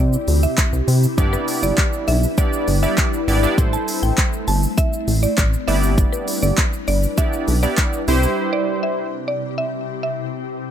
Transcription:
Already playing: analog synth bass C3, ambient pad C3 C4 E4 G4
0.00 synth pluck D5
0.13 shaker
0.28 analog synth bass D2, open hi-hat, shaker
0.43 synth pluck E5, shaker
0.58 analog synth bass C2, kick, clap, closed hi-hat, shaker
0.73 analog synth bass C2, shaker
0.88 analog synth bass C3, open hi-hat, shaker
1.03 shaker
1.17 analog synth bass G1, ambient pad G3 D4 B4, synth keys B3 D4 E4 G4 D5, kick, closed hi-hat, shaker
1.33 synth pluck B4, shaker
1.48 open hi-hat, shaker
1.63 analog synth bass G1, synth pluck D5, shaker
1.78 kick, clap, closed hi-hat, shaker
1.93 shaker
2.08 analog synth bass B1, synth pluck E5, open hi-hat, shaker
2.23 shaker
2.38 synth keys B3 D4 E4 G4 D5, synth pluck D5, kick, closed hi-hat, shaker
2.53 shaker
2.68 analog synth bass G1, open hi-hat, shaker
2.82 synth keys B3 D4 E4 G4 D5, synth pluck E5, shaker
2.98 kick, clap, closed hi-hat, shaker
3.13 shaker
3.28 analog synth bass G#1, synth keys B3 D4 E4 G4 D5, open hi-hat, shaker
3.43 synth keys B3 D4 E4 G4 D5, shaker
3.57 analog synth bass A1, ambient pad A3 C4, synth keys E4 A4 C5, kick, closed hi-hat, shaker
3.73 synth pluck A5, shaker
3.88 open hi-hat, shaker
4.03 analog synth bass A1, synth pluck G5, shaker
4.18 kick, clap, closed hi-hat, shaker
4.33 shaker
4.48 analog synth bass G1, synth pluck A5, open hi-hat, shaker
4.63 shaker
4.78 synth pluck E5, kick, closed hi-hat, shaker
4.93 shaker
5.08 analog synth bass A1, open hi-hat, shaker
5.23 synth pluck D5, shaker
5.38 analog synth bass A1, synth pluck D5, kick, clap, closed hi-hat, shaker
5.53 shaker
5.67 analog synth bass G1, ambient pad G3 D4 B4, synth keys B3 D4 E4 G4 D5, synth pluck E5, open hi-hat, shaker
5.83 shaker
5.98 kick, closed hi-hat, shaker
6.12 synth pluck B4, shaker
6.28 open hi-hat, shaker
6.43 analog synth bass G1, synth pluck D5, shaker
6.58 kick, clap, closed hi-hat, shaker
6.73 shaker
6.88 analog synth bass G1, synth pluck D5, open hi-hat, shaker
7.03 shaker
7.17 synth keys B3 D4 E4 G4 D5, synth pluck E5, kick, closed hi-hat, shaker
7.33 shaker
7.48 analog synth bass B1, open hi-hat, shaker
7.63 synth keys B3 D4 E4 G4 D5, synth pluck D5, shaker
7.78 kick, clap, closed hi-hat, shaker
7.93 shaker
8.08 analog synth bass C2, ambient pad C3 C4 G4, synth keys E4 G4 C5, open hi-hat, shaker
8.23 shaker
8.53 synth pluck D5
8.83 synth pluck E5
9.28 synth pluck D5
9.58 synth pluck E5
10.03 synth pluck E5

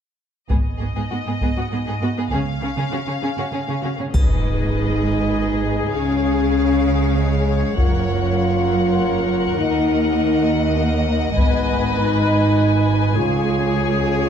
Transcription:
0.50 double bass section G#1, cello section G#2, viola section B3, violin section G#4 D#5, taiko
0.80 cello section G#2, viola section B3, violin section G#4
0.95 cello section G#2, viola section B3, violin section G#4
1.11 cello section G#2, viola section B3, violin section F#4
1.26 cello section G#2, viola section B3, violin section G#4
1.41 cello section G#2, viola section B3, violin section G#4, taiko
1.56 cello section G#2, viola section B3, violin section F#4
1.71 cello section G#2, viola section B3, violin section G#4
1.86 cello section G#2, viola section B3, violin section G#4
2.01 cello section G#2, viola section B3, violin section F#4
2.16 cello section G#2, viola section B3, violin section G#4
2.31 double bass section C#2, cello section C#3, viola section C#4, violin section G#4 F5
2.61 cello section C#3, viola section C#4, violin section G#4
2.77 cello section C#3, viola section C#4, violin section G#4
2.92 cello section C#3, viola section C#4, violin section F#4
3.07 cello section C#3, viola section C#4, violin section G#4
3.21 cello section C#3, viola section C#4, violin section G#4
3.37 cello section C#3, viola section C#4, violin section F#4
3.52 cello section C#3, viola section C#4, violin section G#4
3.67 cello section C#3, viola section C#4, violin section G#4
3.82 cello section C#3, viola section C#4, violin section F#4
3.98 cello section C#3, viola section C#4, violin section G#4
4.13 double bass section G#1, cello section G#2, french horn section D#4, viola section G#4, violin section B4 D#5, taiko, impact, triangle
5.95 double bass section C#2, cello section C#3, french horn section C#4, violin section C#5 F5
7.16 french horn section G#3
7.76 double bass section F#1, cello section F#2, french horn section F4, viola section A#4, violin section F#5, taiko
9.58 double bass section D#2, cello section D#2, french horn section D#4, violin section D#5
10.77 french horn section A#3
11.36 double bass section G#1, cello section G#2, french horn section B3, viola section B4, violin section G#5, taiko
11.96 french horn section D#4
13.17 cello section C#2, double bass section C#2, french horn section F4, viola section G#4, violin section C#5
13.78 french horn section F4

